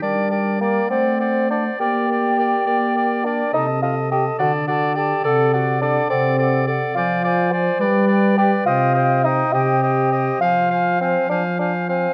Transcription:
<<
  \new Staff \with { instrumentName = "Flute" } { \time 6/8 \key g \minor \tempo 4. = 69 g''8 g''8 g''8 fis''8 fis''8 fis''8 | g''8 g''8 g''8 g''8 g''8 g''8 | a''8 a''8 a''8 a''8 a''8 a''8 | fis''8 fis''8 fis''8 fis''8 fis''8 fis''8 |
\key c \minor aes''8 aes''8 aes''8 g''8 g''8 g''8 | g''8 g''8 g''8 g''8 g''8 g''8 | aes''8 aes''8 aes''8 aes''8 aes''8 aes''8 | }
  \new Staff \with { instrumentName = "Oboe" } { \time 6/8 \key g \minor d''8 d''8 d''8 d''8 d''8 d''8 | d''8 d''8 d''8 d''8 d''8 d''8 | ees''8 ees''8 ees''8 d''8 d''8 d''8 | d''8 d''8 d''8 d''8 d''8 d''8 |
\key c \minor d''8 d''8 d''8 d''8 d''8 d''8 | ees''8 ees''8 ees''8 ees''8 ees''8 ees''8 | f''8 f''8 f''8 f''8 f''8 f''8 | }
  \new Staff \with { instrumentName = "Clarinet" } { \time 6/8 \key g \minor bes'8 bes'8 bes'8 c''8 c''8 c''8 | bes'8 bes'8 bes'8 bes'8 bes'8 bes'8 | a'8 a'8 a'8 a'8 a'8 a'8 | a'8 a'8 a'8 a'8 a'8 a'8 |
\key c \minor c''8 c''8 c''8 b'8 b'8 b'8 | c''8 c''8 c''8 c''8 c''8 c''8 | c''8 c''8 c''8 c''8 c''8 c''8 | }
  \new Staff \with { instrumentName = "Bassoon" } { \time 6/8 \key g \minor d'4 bes8 c'4 d'8 | g'2~ g'8 d'8 | ees'8 f'8 g'8 fis'8 fis'8 g'8 | a'8 fis'8 d'8 c'4 r8 |
\key c \minor f'4 c''8 b'4 g'8 | f'4 ees'8 g'4. | f'4 c'8 d'8 d'8 c'8 | }
  \new Staff \with { instrumentName = "French horn" } { \clef bass \time 6/8 \key g \minor g4. a4. | bes4. bes4. | c4. d4. | c4. c4. |
\key c \minor f4. g4. | c4. c4. | f4. f4. | }
>>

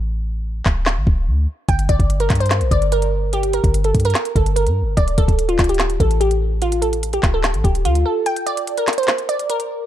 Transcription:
<<
  \new Staff \with { instrumentName = "Synth pluck" } { \time 4/4 \key d \phrygian \tempo 4 = 146 r1 | g''8 d''8. bes'8 c''8. d''8 bes'4 | g'8 bes'8. a'8 bes'8. a'8 bes'4 | d''8 a'8. f'8 g'8. a'8 g'4 |
f'8 a'8. g'8 a'8. g'8 f'8 a'8 | g''8 d''8. bes'8 c''8. d''8 bes'4 | }
  \new Staff \with { instrumentName = "808-style bass" } { \clef bass \time 4/4 \key d \phrygian a,,4. d,,8. a,,16 d,,8 d,8 r8 | g,,8 g,,16 g,,8. g,8. bes,,16 g,,4.~ | g,,8. g,,8. g,8 r8 g,,8. g,16. g,,16. | d,,8 d,,16 d,,8. d,,4 a,,4.~ |
a,,4. d,,8. a,,16 d,,8 d,8 r8 | r1 | }
  \new DrumStaff \with { instrumentName = "Drums" } \drummode { \time 4/4 r4 r8 <hc bd sn>8 <hc sn>8 bd8 r4 | <hh bd>16 hh16 <hh bd>16 <hh bd>16 hh16 hh16 <hc hh bd sn>32 hh32 hh32 hh32 <hc hh sn>16 hh16 <hh bd>16 hh16 hh16 hh8. | hh16 hh16 hh16 <hh bd>16 hh16 hh16 <hh bd>32 hh32 hh32 hh32 <hc hh sn>16 hh16 <hh bd>16 hh16 hh16 hh8. | <hh bd>16 hh16 <hh bd>16 <hh bd>16 hh16 hh16 <hc hh bd sn>32 hh32 hh32 hh32 <hc hh sn>16 hh16 <hh bd>16 hh16 hh16 hh8. |
hh16 hh16 hh16 hh16 hh16 hh16 <hc hh bd sn>8 <hc hh sn>16 hh16 <hh bd>16 hh16 hh16 hh8. | hh16 hh16 hh16 hh16 hh16 hh16 <hc hh sn>32 hh32 hh32 hh32 <hc hh sn>16 hh16 hh16 hh16 hh16 hh8. | }
>>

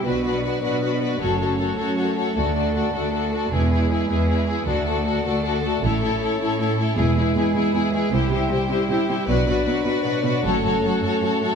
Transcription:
<<
  \new Staff \with { instrumentName = "Violin section" } { \time 12/8 \key d \lydian \tempo 4. = 104 d''8 d''8 d''8 d''8 d''8 d''8 cis''8 cis''8 cis''8 cis''8 cis''8 cis''8 | d''8 d''8 d''8 d''8 d''8 d''8 b'8 b'8 b'8 b'8 b'8 b'8 | d''8 d''8 d''8 d''8 d''8 d''8 cis''8 cis''8 cis''8 cis''8 cis''8 cis''8 | b'8 b'8 b'8 b'8 b'8 b'8 c''8 c''8 c''8 c''8 c''8 c''8 |
d''8 d''8 d''8 d''8 d''8 d''8 cis''8 cis''8 cis''8 cis''8 cis''8 cis''8 | }
  \new Staff \with { instrumentName = "Violin section" } { \time 12/8 \key d \lydian b'8 b'8 b'8 b'8 b'8 b'8 a'8 a'8 a'8 a'8 a'8 a'8 | a'8 a'8 a'8 a'8 a'8 a'8 gis'8 gis'8 gis'8 gis'8 gis'8 gis'8 | a'8 a'8 a'8 a'8 a'8 a'8 a'8 a'8 a'8 a'8 a'8 a'8 | gis'8 gis'8 gis'8 gis'8 gis'8 gis'8 g'8 g'8 g'8 g'8 g'8 g'8 |
b'8 b'8 b'8 b'8 b'8 b'8 a'8 a'8 a'8 a'8 a'8 a'8 | }
  \new Staff \with { instrumentName = "Viola section" } { \time 12/8 \key d \lydian fis'8 fis'8 fis'8 fis'8 fis'8 fis'8 fis'8 fis'8 fis'8 fis'8 fis'8 fis'8 | fis'8 fis'8 fis'8 fis'8 fis'8 fis'8 e'8 e'8 e'8 e'8 e'8 e'8 | fis'8 fis'8 fis'8 fis'8 fis'8 fis'8 e'8 e'8 e'8 e'8 e'8 e'8 | e'8 e'8 e'8 e'8 e'8 e'8 e'8 e'8 e'8 e'8 e'8 e'8 |
fis'8 fis'8 fis'8 fis'8 fis'8 fis'8 fis'8 fis'8 fis'8 fis'8 fis'8 fis'8 | }
  \new Staff \with { instrumentName = "French horn section" } { \time 12/8 \key d \lydian << { d'2. cis'2. | fis'2. e'2. | fis'2. cis'2. | e'1. |
d'2. cis'2. | } \\ { fis2. a2.~ | a2. gis2. | a1. | gis2. g2. |
fis2. a2. | } >> }
  \new Staff \with { instrumentName = "Cello section" } { \clef bass \time 12/8 \key d \lydian b,4. b,4. fis,4. fis,4. | d,4. d,4. e,4. e,4. | d,4. d,4. a,4. a,4. | e,8 e,8 e,8 e,8 e,8 e,8 c8 c8 c8 c8 c8 c8 |
b,8 b,8 b,8 b,8 b,8 b,8 fis,8 fis,8 fis,8 fis,8 fis,8 fis,8 | }
  \new Staff \with { instrumentName = "Double bass section" } { \clef bass \time 12/8 \key d \lydian b,,4 r2 fis,,4 r2 | d,4 r2 e,,4 r2 | d,4 r2 a,,4 r2 | e,,8 r2 r8 c,8 r2 r8 |
b,,8 r2 r8 fis,,8 r2 r8 | }
>>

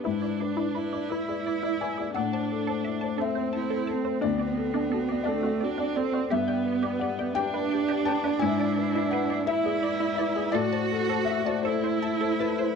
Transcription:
<<
  \new Staff \with { instrumentName = "Felt piano" } { \time 6/8 \key a \dorian \tempo 4. = 57 << { b'4. b'4 gis''8 | fis''4. e''4. | d''4. d''4 r8 | e''4 fis''8 g''4 a''8 |
gis''4 fis''8 e''4 e''8 | d''4 e''16 d''16 c''4 b'8 | } \\ { gis,16 d''16 b'16 d''16 e'16 d''8 d''16 e'16 d''16 b'16 d''16 | a,16 c''16 a'16 c''16 e'16 c''16 a'16 c''16 e'16 c''16 a'16 c''16 | d,16 d''16 a'16 d''16 fis'16 d''16 a'16 d''16 fis'16 d''16 a'16 d''16 | g,16 d''16 b'16 d''16 g'16 d''16 b'16 d''16 g'16 d''16 b'16 d''16 |
gis,16 d''16 b'16 d''16 e'16 d''16 b'16 d''16 e'16 d''16 b'16 d''16 | a,16 c''16 a'16 c''16 e'16 c''16 a'8 e'16 c''16 a'16 c''16 | } >> }
  \new Staff \with { instrumentName = "Synth pluck" } { \time 6/8 \key a \dorian e'16 d''16 r16 e'16 b'16 d''16 e'16 gis'16 d''16 e'16 d''16 gis'16 | a'16 a''16 r16 a'16 e''16 a''16 a'16 c''16 a''16 a'16 a''16 c''16 | d'16 d''16 r16 d'16 a'16 d''16 d'16 fis'16 d''16 d'16 d''16 fis'16 | g'16 g''16 r16 g'16 d''16 g''16 g'16 b'16 g''16 g'16 g''16 b'16 |
e'16 d''16 r16 e'16 b'16 d''16 e'16 gis'16 d''16 e'16 d''16 gis'16 | a'16 a''16 r16 a'16 e''16 a''16 a'16 c''16 a''16 a'16 a''16 c''16 | }
  \new Staff \with { instrumentName = "Cello" } { \time 6/8 \key a \dorian e'8 d'8 e'2 | d'4. c'8 e'8 c'8~ | c'2. | b4. d'4.~ |
d'4. e'4. | fis'4. e'4. | }
  \new Staff \with { instrumentName = "Viola" } { \time 6/8 \key a \dorian d'4. e'4. | d'4. c'4. | b4. a8 d'8 c'8 | b4. d'4. |
e'4. e'4. | fis'4. e'4. | }
>>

